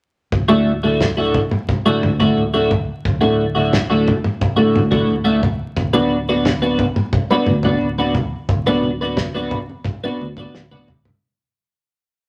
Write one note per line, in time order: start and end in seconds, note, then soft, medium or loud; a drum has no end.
0.32 1.36 D1 medium
0.32 kick loud
0.32 floor tom medium
0.48 0.72 A2 medium
0.48 0.72 D3 medium
0.48 0.71 A3 medium
0.48 0.71 F#4 medium
0.48 high conga medium
0.83 1.06 A2 medium
0.83 1.06 D3 medium
0.83 1.06 A3 medium
0.83 1.06 F#4 medium
1.00 snare medium
1.00 floor tom medium
1.17 1.40 A2 medium
1.17 1.40 D3 medium
1.17 1.40 A3 medium
1.17 1.40 F#4 medium
1.34 floor tom medium
1.34 low conga medium
1.51 mid tom medium
1.69 kick loud
1.69 floor tom medium
1.69 low conga medium
1.86 2.09 A2 medium
1.86 2.09 D3 medium
1.86 2.08 A3 medium
1.86 2.08 F#4 medium
2.03 2.29 D2 medium
2.03 mid tom medium
2.20 2.43 A2 medium
2.20 2.43 D3 medium
2.20 2.42 A3 medium
2.20 2.42 F#4 medium
2.20 floor tom medium
2.20 high conga medium
2.37 2.89 D1 medium
2.54 2.71 A2 medium
2.54 2.72 D3 medium
2.54 2.71 A3 medium
2.54 2.71 F#4 loud
2.54 high conga medium
2.71 muted clean electric guitar stroke soft
2.71 kick medium
2.71 floor tom medium
3.05 4.09 D1 medium
3.05 kick loud
3.05 floor tom medium
3.21 3.44 A2 medium
3.21 3.44 D3 medium
3.21 3.44 A3 medium
3.21 3.44 F#4 medium
3.21 high conga medium
3.55 3.79 A2 medium
3.55 3.79 D3 medium
3.55 3.78 A3 medium
3.55 3.78 F#4 medium
3.73 snare medium
3.73 floor tom medium
3.90 4.13 A2 medium
3.90 4.13 D3 medium
3.90 4.13 A3 medium
3.90 4.12 F#4 medium
4.08 floor tom medium
4.08 low conga medium
4.24 mid tom medium
4.41 kick loud
4.41 floor tom medium
4.41 low conga medium
4.56 4.81 A2 medium
4.56 4.80 D3 medium
4.56 4.80 A3 medium
4.56 4.80 F#4 medium
4.76 5.02 D2 medium
4.76 mid tom medium
4.91 5.15 A2 medium
4.91 5.14 D3 medium
4.91 5.14 A3 medium
4.91 5.14 F#4 medium
4.91 floor tom medium
4.91 high conga medium
5.10 5.62 D1 medium
5.24 5.40 A2 medium
5.24 5.41 D3 medium
5.24 5.41 A3 medium
5.24 5.42 F#4 medium
5.24 high conga medium
5.42 muted clean electric guitar stroke soft
5.42 kick medium
5.42 floor tom medium
5.42 low conga medium
5.76 6.81 D1 medium
5.76 kick loud
5.76 floor tom medium
5.93 6.17 B3 medium
5.93 6.17 D4 medium
5.93 6.16 F#4 medium
5.93 6.16 B4 medium
5.93 high conga medium
6.29 6.52 B3 medium
6.29 6.51 D4 medium
6.29 6.51 F#4 medium
6.29 6.51 B4 medium
6.45 snare medium
6.45 floor tom medium
6.62 6.85 B3 medium
6.62 6.85 D4 medium
6.62 6.85 F#4 loud
6.62 6.85 B4 medium
6.79 floor tom medium
6.79 low conga medium
6.96 mid tom medium
7.13 kick loud
7.13 floor tom medium
7.13 low conga medium
7.31 7.54 B3 medium
7.31 7.54 D4 medium
7.31 7.53 F#4 medium
7.31 7.53 B4 medium
7.46 7.74 D2 medium
7.46 mid tom medium
7.63 7.88 B3 medium
7.63 7.87 D4 medium
7.63 7.87 F#4 medium
7.63 7.87 B4 medium
7.63 floor tom medium
7.63 high conga medium
7.81 8.33 D1 medium
7.98 8.14 B3 medium
7.98 8.14 D4 medium
7.98 8.15 F#4 medium
7.98 8.15 B4 medium
7.98 high conga medium
8.15 muted clean electric guitar stroke soft
8.15 kick medium
8.15 floor tom medium
8.15 low conga medium
8.49 9.53 D1 medium
8.49 kick loud
8.49 floor tom medium
8.66 8.90 B3 medium
8.66 8.90 D4 medium
8.66 8.90 F#4 medium
8.66 8.89 B4 medium
8.66 high conga medium
8.83 low conga medium
9.01 9.24 B3 medium
9.01 9.24 D4 medium
9.01 9.24 F#4 medium
9.01 9.24 B4 medium
9.17 snare medium
9.17 floor tom medium
9.35 9.58 B3 medium
9.35 9.58 D4 medium
9.35 9.58 F#4 medium
9.35 9.57 B4 medium
9.51 floor tom medium
9.51 low conga medium
9.69 high conga medium
9.84 kick loud
9.84 floor tom medium
9.84 low conga medium
10.04 10.27 B3 medium
10.04 10.27 D4 medium
10.04 10.27 F#4 medium
10.04 10.26 B4 medium
10.21 10.47 D2 medium
10.37 10.61 B3 medium
10.37 10.61 D4 medium
10.37 10.61 F#4 medium
10.37 10.60 B4 medium
10.37 floor tom medium
10.37 high conga medium
10.55 11.08 D1 loud
10.55 snare medium
10.71 10.88 B3 medium
10.71 10.89 D4 medium
10.71 10.89 F#4 medium
10.71 10.89 B4 loud
10.71 high tom medium
10.71 high conga soft
10.88 muted clean electric guitar stroke soft
10.88 mid tom medium
10.88 low conga medium
11.05 floor tom medium
11.05 low conga medium